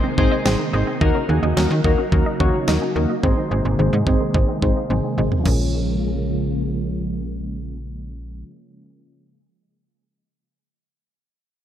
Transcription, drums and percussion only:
0.18 kick medium
0.46 snare loud
1.01 kick loud
1.57 snare loud
1.84 kick medium
2.12 kick medium
2.40 kick medium
2.68 snare loud
3.23 kick medium
4.07 kick medium
4.34 kick medium
4.62 kick medium
4.90 high tom soft
5.18 mid tom medium
5.32 floor tom medium
5.45 kick medium
5.45 crash medium

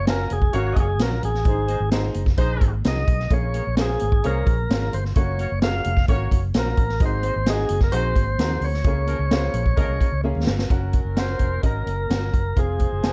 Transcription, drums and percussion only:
0.07 snare loud
0.07 closed hi-hat medium
0.07 muted conga soft
0.18 muted conga soft
0.18 high conga soft
0.30 closed hi-hat medium
0.30 high conga medium
0.42 kick medium
0.53 closed hi-hat medium
0.53 muted conga soft
0.76 kick medium
0.76 closed hi-hat medium
0.76 high conga medium
0.99 snare loud
0.99 closed hi-hat loud
0.99 high conga medium
1.11 muted conga soft
1.11 low conga medium
1.23 closed hi-hat medium
1.23 low conga medium
1.34 snare soft
1.45 kick loud
1.45 closed hi-hat medium
1.45 low conga medium
1.58 muted conga soft
1.68 closed hi-hat medium
1.68 high conga medium
1.92 snare loud
1.92 closed hi-hat medium
2.04 high conga soft
2.14 closed hi-hat medium
2.14 high conga medium
2.26 kick medium
2.26 snare soft
2.37 kick medium
2.37 closed hi-hat medium
2.37 muted conga soft
2.61 kick medium
2.61 closed hi-hat medium
2.61 high conga medium
2.84 snare loud
2.84 closed hi-hat medium
2.84 high conga medium
2.96 low conga medium
3.07 kick loud
3.07 closed hi-hat medium
3.07 low conga medium
3.20 snare soft
3.30 kick loud
3.30 closed hi-hat medium
3.30 muted conga soft
3.30 low conga medium
3.42 muted conga soft
3.53 closed hi-hat medium
3.53 high conga medium
3.77 snare loud
3.77 closed hi-hat medium
3.89 high conga soft
3.99 closed hi-hat medium
3.99 high conga medium
4.12 kick medium
4.24 closed hi-hat medium
4.35 muted conga soft
4.46 kick loud
4.46 closed hi-hat medium
4.46 high conga medium
4.69 snare loud
4.69 closed hi-hat medium
4.69 muted conga soft
4.69 high conga medium
4.80 muted conga soft
4.80 low conga medium
4.92 closed hi-hat medium
4.92 low conga medium
5.05 snare soft
5.16 kick loud
5.16 closed hi-hat medium
5.16 muted conga soft
5.16 low conga medium
5.38 closed hi-hat medium
5.38 high conga medium
5.62 snare loud
5.62 closed hi-hat medium
5.73 high conga soft
5.84 closed hi-hat medium
5.84 high conga medium
5.97 kick medium
5.97 snare soft
6.08 kick loud
6.08 closed hi-hat medium
6.31 kick medium
6.31 closed hi-hat medium
6.31 high conga medium
6.54 snare loud
6.54 closed hi-hat medium
6.54 muted conga soft
6.54 high conga medium
6.65 muted conga soft
6.65 low conga medium
6.77 kick loud
6.77 closed hi-hat medium
6.77 low conga medium
6.89 snare soft
7.00 kick loud
7.00 closed hi-hat medium
7.00 muted conga soft
7.00 low conga medium
7.22 closed hi-hat medium
7.22 high conga medium
7.46 snare loud
7.46 closed hi-hat loud
7.57 muted conga soft
7.57 high conga soft
7.69 closed hi-hat medium
7.69 high conga medium
7.80 kick medium
7.80 snare soft
7.92 closed hi-hat medium
8.15 kick medium
8.15 closed hi-hat medium
8.15 high conga medium
8.38 snare loud
8.38 closed hi-hat loud
8.38 high conga medium
8.50 muted conga soft
8.50 low conga medium
8.61 open hi-hat medium
8.61 low conga medium
8.74 snare soft
8.84 kick loud
8.84 closed hi-hat medium
8.84 low conga medium
8.96 muted conga soft
9.07 closed hi-hat medium
9.07 high conga medium
9.31 snare loud
9.31 closed hi-hat medium
9.42 high conga soft
9.54 closed hi-hat medium
9.54 high conga medium
9.66 kick medium
9.77 kick loud
9.77 closed hi-hat medium
9.77 muted conga soft
9.89 muted conga soft
10.00 kick loud
10.00 closed hi-hat medium
10.00 high conga medium
10.24 muted conga soft
10.24 high conga medium
10.35 low conga medium
10.47 snare loud
10.47 low conga medium
10.59 snare loud
10.69 kick loud
10.69 closed hi-hat medium
10.69 muted conga soft
10.69 low conga medium
10.82 muted conga soft
10.93 kick medium
10.93 closed hi-hat medium
10.93 high conga medium
11.17 snare loud
11.17 closed hi-hat medium
11.28 muted conga soft
11.39 kick medium
11.39 closed hi-hat medium
11.39 high conga medium
11.63 kick medium
11.63 closed hi-hat medium
11.87 closed hi-hat medium
11.87 high conga medium
12.10 snare loud
12.10 closed hi-hat medium
12.10 muted conga soft
12.10 high conga medium
12.21 muted conga soft
12.33 kick medium
12.33 closed hi-hat medium
12.33 low conga medium
12.56 kick loud
12.56 closed hi-hat medium
12.56 low conga medium
12.79 kick medium
12.79 closed hi-hat medium
12.79 high conga medium
13.03 snare loud
13.03 closed hi-hat medium
13.03 muted conga soft

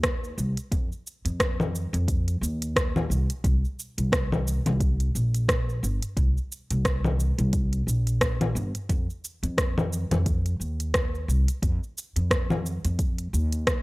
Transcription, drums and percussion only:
0.03 kick loud
0.03 cross-stick loud
0.03 closed hi-hat medium
0.03 shaker soft
0.24 shaker soft
0.38 shaker medium
0.57 closed hi-hat soft
0.57 shaker soft
0.72 kick loud
0.72 closed hi-hat medium
0.72 shaker soft
0.92 shaker soft
1.07 shaker medium
1.26 closed hi-hat soft
1.26 shaker soft
1.40 kick loud
1.40 cross-stick loud
1.40 closed hi-hat medium
1.40 shaker soft
1.60 low conga medium
1.60 shaker soft
1.75 shaker medium
1.94 closed hi-hat soft
1.94 shaker soft
2.08 kick loud
2.08 closed hi-hat medium
2.08 shaker soft
2.28 closed hi-hat soft
2.28 shaker soft
2.43 shaker medium
2.62 closed hi-hat soft
2.62 shaker soft
2.76 kick loud
2.76 cross-stick loud
2.76 closed hi-hat medium
2.76 shaker soft
2.96 low conga medium
2.96 shaker soft
3.11 shaker medium
3.30 closed hi-hat soft
3.30 shaker soft
3.44 kick loud
3.44 closed hi-hat medium
3.44 shaker soft
3.65 shaker soft
3.79 shaker medium
3.98 closed hi-hat soft
3.98 shaker soft
4.12 kick loud
4.12 cross-stick loud
4.12 closed hi-hat medium
4.12 shaker soft
4.32 low conga medium
4.32 shaker soft
4.48 shaker medium
4.66 closed hi-hat soft
4.66 low conga medium
4.66 shaker soft
4.80 kick loud
4.80 closed hi-hat medium
4.80 shaker soft
5.00 closed hi-hat soft
5.00 shaker soft
5.16 shaker medium
5.34 closed hi-hat soft
5.34 shaker soft
5.48 kick loud
5.48 cross-stick loud
5.48 closed hi-hat medium
5.48 shaker soft
5.69 shaker soft
5.84 shaker medium
6.02 closed hi-hat soft
6.02 shaker soft
6.17 kick loud
6.17 closed hi-hat medium
6.17 shaker soft
6.38 shaker soft
6.52 shaker medium
6.71 closed hi-hat soft
6.71 shaker soft
6.85 kick loud
6.85 cross-stick loud
6.85 closed hi-hat medium
6.85 shaker soft
7.04 low conga medium
7.04 shaker soft
7.20 shaker medium
7.39 closed hi-hat soft
7.39 shaker soft
7.53 kick loud
7.53 closed hi-hat medium
7.53 shaker soft
7.73 closed hi-hat soft
7.73 shaker soft
7.88 shaker medium
8.07 closed hi-hat soft
8.07 shaker soft
8.21 kick loud
8.21 cross-stick loud
8.21 closed hi-hat medium
8.21 shaker soft
8.41 closed hi-hat soft
8.41 low conga medium
8.41 shaker soft
8.56 shaker medium
8.75 closed hi-hat soft
8.75 shaker soft
8.89 kick loud
8.89 closed hi-hat medium
8.89 shaker soft
9.10 shaker soft
9.25 shaker medium
9.43 closed hi-hat soft
9.43 shaker soft
9.58 kick loud
9.58 cross-stick medium
9.58 closed hi-hat medium
9.58 shaker soft
9.78 low conga medium
9.78 shaker soft
9.93 shaker medium
10.11 closed hi-hat soft
10.11 low conga medium
10.11 shaker soft
10.26 kick loud
10.26 closed hi-hat medium
10.26 shaker soft
10.46 closed hi-hat soft
10.46 shaker soft
10.61 shaker medium
10.80 closed hi-hat soft
10.80 shaker soft
10.94 kick loud
10.94 cross-stick loud
10.94 closed hi-hat medium
10.94 shaker soft
11.15 shaker soft
11.30 shaker medium
11.48 closed hi-hat soft
11.48 shaker soft
11.63 kick loud
11.63 closed hi-hat medium
11.63 shaker soft
11.84 shaker soft
11.98 shaker medium
12.16 closed hi-hat soft
12.16 shaker soft
12.31 kick loud
12.31 cross-stick loud
12.31 closed hi-hat medium
12.31 shaker soft
12.50 low conga medium
12.50 shaker soft
12.66 shaker medium
12.85 closed hi-hat soft
12.85 shaker soft
12.99 kick loud
12.99 closed hi-hat medium
12.99 shaker soft
13.18 closed hi-hat soft
13.18 shaker soft
13.34 shaker medium
13.52 closed hi-hat soft
13.52 shaker soft
13.67 kick loud
13.67 cross-stick loud
13.67 closed hi-hat medium
13.67 shaker soft

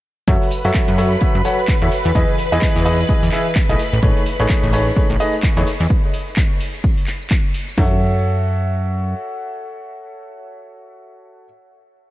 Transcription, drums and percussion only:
0.28 kick loud
0.28 closed hi-hat loud
0.28 tambourine soft
0.42 snare medium
0.42 tambourine soft
0.50 closed hi-hat medium
0.50 open hi-hat loud
0.50 tambourine medium
0.65 snare medium
0.65 tambourine soft
0.74 kick loud
0.74 snare loud
0.74 clap loud
0.74 closed hi-hat medium
0.74 tambourine soft
0.89 tambourine soft
0.98 closed hi-hat medium
0.98 open hi-hat loud
0.98 tambourine medium
1.12 tambourine soft
1.21 kick loud
1.21 closed hi-hat medium
1.21 tambourine soft
1.36 tambourine soft
1.45 closed hi-hat medium
1.45 open hi-hat loud
1.45 tambourine medium
1.59 closed hi-hat soft
1.59 tambourine soft
1.68 kick loud
1.68 snare loud
1.68 clap loud
1.68 closed hi-hat medium
1.68 tambourine soft
1.83 tambourine soft
1.92 closed hi-hat medium
1.92 open hi-hat loud
1.92 tambourine medium
2.06 tambourine soft
2.15 kick loud
2.15 closed hi-hat loud
2.15 tambourine soft
2.30 tambourine soft
2.38 closed hi-hat medium
2.38 open hi-hat loud
2.38 tambourine medium
2.52 closed hi-hat soft
2.52 tambourine soft
2.62 kick loud
2.62 snare loud
2.62 clap loud
2.62 closed hi-hat medium
2.62 tambourine soft
2.77 tambourine soft
2.86 closed hi-hat medium
2.86 open hi-hat loud
2.86 tambourine medium
2.99 snare medium
2.99 tambourine soft
3.09 kick loud
3.09 closed hi-hat medium
3.09 tambourine soft
3.22 snare medium
3.22 open hi-hat medium
3.22 tambourine soft
3.32 clap medium
3.32 closed hi-hat medium
3.32 open hi-hat loud
3.32 tambourine medium
3.47 tambourine soft
3.55 kick loud
3.55 snare loud
3.55 clap loud
3.55 closed hi-hat medium
3.55 tambourine soft
3.70 tambourine soft
3.79 closed hi-hat medium
3.79 open hi-hat loud
3.79 tambourine medium
3.94 tambourine soft
4.03 kick loud
4.03 closed hi-hat loud
4.03 tambourine soft
4.16 snare medium
4.16 tambourine soft
4.26 closed hi-hat medium
4.26 open hi-hat loud
4.26 tambourine medium
4.39 snare soft
4.39 tambourine soft
4.49 kick loud
4.49 snare loud
4.49 clap loud
4.49 closed hi-hat medium
4.49 tambourine soft
4.64 tambourine soft
4.72 closed hi-hat medium
4.72 open hi-hat loud
4.72 tambourine medium
4.87 tambourine soft
4.96 kick loud
4.96 closed hi-hat medium
4.96 tambourine soft
5.11 tambourine soft
5.20 closed hi-hat medium
5.20 open hi-hat loud
5.20 tambourine medium
5.33 closed hi-hat soft
5.33 tambourine soft
5.43 kick loud
5.43 snare loud
5.43 clap loud
5.43 closed hi-hat medium
5.43 tambourine soft
5.58 tambourine soft
5.66 snare loud
5.66 closed hi-hat medium
5.66 open hi-hat loud
5.66 tambourine medium
5.80 snare loud
5.80 closed hi-hat medium
5.80 tambourine soft
5.90 kick loud
5.90 tambourine soft
6.05 tambourine soft
6.14 open hi-hat loud
6.14 tambourine medium
6.28 tambourine soft
6.36 kick loud
6.36 clap loud
6.36 tambourine soft
6.51 tambourine soft
6.61 open hi-hat loud
6.61 tambourine medium
6.75 tambourine soft
6.84 kick loud
6.84 tambourine soft
6.97 open hi-hat medium
6.97 tambourine soft
7.07 clap medium
7.07 open hi-hat loud
7.07 tambourine medium
7.22 tambourine soft
7.30 kick loud
7.30 clap loud
7.30 tambourine soft
7.45 tambourine soft
7.54 open hi-hat loud
7.54 tambourine medium
7.69 tambourine soft
7.78 kick loud
7.78 snare loud

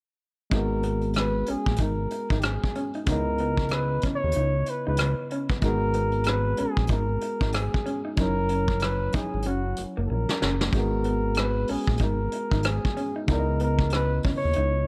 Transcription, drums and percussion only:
0.51 kick medium
0.51 closed hi-hat medium
0.83 closed hi-hat soft
1.01 closed hi-hat soft
1.13 cross-stick medium
1.13 closed hi-hat medium
1.46 closed hi-hat medium
1.66 kick medium
1.66 closed hi-hat soft
1.76 kick medium
1.76 closed hi-hat medium
2.10 closed hi-hat medium
2.30 kick medium
2.30 closed hi-hat soft
2.41 cross-stick loud
2.41 closed hi-hat medium
2.64 kick medium
2.75 closed hi-hat soft
2.93 closed hi-hat soft
3.06 kick loud
3.06 closed hi-hat medium
3.38 closed hi-hat soft
3.57 kick medium
3.68 cross-stick medium
3.68 closed hi-hat medium
4.01 kick medium
4.01 closed hi-hat medium
4.32 closed hi-hat medium
4.66 closed hi-hat medium
4.97 cross-stick loud
4.97 closed hi-hat medium
5.31 closed hi-hat soft
5.49 kick medium
5.49 closed hi-hat soft
5.61 kick medium
5.61 closed hi-hat medium
5.93 closed hi-hat soft
6.12 closed hi-hat soft
6.24 cross-stick medium
6.24 closed hi-hat medium
6.57 closed hi-hat medium
6.77 kick medium
6.87 kick medium
6.87 closed hi-hat medium
7.21 closed hi-hat medium
7.41 kick medium
7.52 cross-stick loud
7.52 closed hi-hat medium
7.74 kick medium
7.86 closed hi-hat soft
8.17 kick loud
8.17 closed hi-hat medium
8.49 closed hi-hat medium
8.68 kick medium
8.79 cross-stick loud
8.79 closed hi-hat medium
9.12 kick medium
9.12 closed hi-hat medium
9.42 closed hi-hat medium
9.76 closed hi-hat medium
10.29 snare medium
10.42 snare medium
10.61 snare medium
10.72 kick loud
10.72 closed hi-hat medium
11.04 closed hi-hat medium
11.34 cross-stick loud
11.34 closed hi-hat medium
11.67 open hi-hat soft
11.87 kick medium
11.97 kick medium
11.97 closed hi-hat medium
12.32 closed hi-hat medium
12.51 kick medium
12.51 closed hi-hat soft
12.63 cross-stick loud
12.63 closed hi-hat medium
12.85 kick medium
12.97 closed hi-hat soft
13.28 kick medium
13.28 closed hi-hat medium
13.60 closed hi-hat soft
13.79 kick medium
13.90 cross-stick medium
13.90 closed hi-hat medium
14.23 kick medium
14.23 open hi-hat soft
14.53 closed hi-hat medium

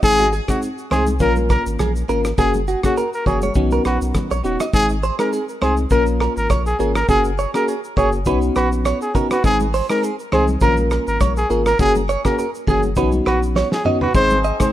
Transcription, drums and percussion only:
0.03 kick loud
0.03 shaker medium
0.19 high conga medium
0.19 shaker medium
0.33 shaker medium
0.48 kick medium
0.48 cross-stick medium
0.48 shaker loud
0.62 shaker medium
0.78 shaker soft
0.91 cross-stick medium
0.91 low conga medium
0.91 shaker soft
1.07 high conga medium
1.07 shaker medium
1.19 kick medium
1.19 low conga medium
1.19 shaker medium
1.36 high conga medium
1.36 shaker soft
1.50 kick medium
1.50 cross-stick medium
1.50 shaker medium
1.66 shaker medium
1.79 cross-stick medium
1.79 high conga medium
1.79 low conga medium
1.79 shaker medium
1.96 shaker medium
2.09 shaker medium
2.25 cross-stick loud
2.25 shaker loud
2.38 kick loud
2.38 shaker medium
2.54 high conga medium
2.54 shaker medium
2.68 shaker medium
2.83 kick medium
2.83 cross-stick medium
2.83 shaker loud
2.97 shaker medium
3.13 shaker soft
3.26 kick medium
3.26 low conga medium
3.26 shaker soft
3.42 high conga medium
3.42 shaker medium
3.55 kick medium
3.55 low conga medium
3.55 shaker medium
3.71 high conga medium
3.71 shaker soft
3.85 cross-stick medium
3.85 shaker soft
4.02 shaker medium
4.15 kick medium
4.15 cross-stick medium
4.15 high conga medium
4.15 low conga medium
4.15 shaker medium
4.31 shaker medium
4.44 shaker medium
4.60 cross-stick loud
4.60 shaker loud
4.73 kick loud
4.73 shaker medium
4.89 shaker medium
5.03 shaker medium
5.19 cross-stick medium
5.19 shaker medium
5.33 shaker medium
5.49 shaker soft
5.62 cross-stick medium
5.77 shaker medium
5.90 kick medium
5.90 shaker medium
6.06 shaker soft
6.20 cross-stick medium
6.37 shaker medium
6.50 kick medium
6.50 cross-stick medium
6.50 shaker medium
6.66 shaker medium
6.80 shaker medium
6.95 cross-stick loud
6.95 shaker medium
7.09 kick loud
7.09 shaker medium
7.24 shaker medium
7.39 shaker medium
7.54 cross-stick medium
7.54 shaker medium
7.68 shaker medium
7.84 shaker soft
7.97 kick loud
7.97 shaker soft
8.12 shaker soft
8.25 kick medium
8.25 shaker medium
8.42 shaker soft
8.55 cross-stick medium
8.55 shaker medium
8.72 shaker medium
8.85 cross-stick loud
8.85 shaker medium
9.02 shaker medium
9.15 kick loud
9.15 shaker medium
9.31 cross-stick loud
9.31 shaker medium
9.44 kick loud
9.44 shaker medium
9.60 high conga medium
9.60 shaker medium
9.74 open hi-hat medium
9.74 shaker medium
9.90 cross-stick medium
9.90 shaker medium
10.03 hi-hat pedal medium
10.03 shaker medium
10.19 shaker soft
10.32 cross-stick loud
10.32 low conga medium
10.48 high conga medium
10.48 shaker medium
10.60 kick medium
10.60 low conga medium
10.60 shaker medium
10.77 high conga medium
10.77 shaker soft
10.91 cross-stick medium
10.91 shaker soft
11.08 shaker medium
11.21 kick medium
11.21 cross-stick loud
11.21 high conga medium
11.21 shaker medium
11.37 shaker medium
11.50 shaker medium
11.66 cross-stick loud
11.66 shaker medium
11.79 kick loud
11.79 shaker medium
11.95 high conga medium
11.95 shaker medium
12.09 shaker medium
12.25 kick medium
12.25 cross-stick medium
12.25 shaker medium
12.39 shaker medium
12.55 shaker soft
12.67 kick loud
12.67 low conga medium
12.67 shaker soft
12.83 high conga medium
12.83 shaker medium
12.96 kick loud
12.96 low conga medium
12.96 shaker medium
13.12 high conga medium
13.12 shaker soft
13.26 cross-stick medium
13.43 shaker medium
13.56 snare medium
13.56 high conga medium
13.72 snare medium
13.85 mid tom medium
14.01 floor tom medium
14.14 kick loud
14.14 shaker medium
14.30 high conga medium
14.30 shaker medium
14.44 shaker medium
14.60 kick medium
14.60 cross-stick medium
14.60 shaker loud

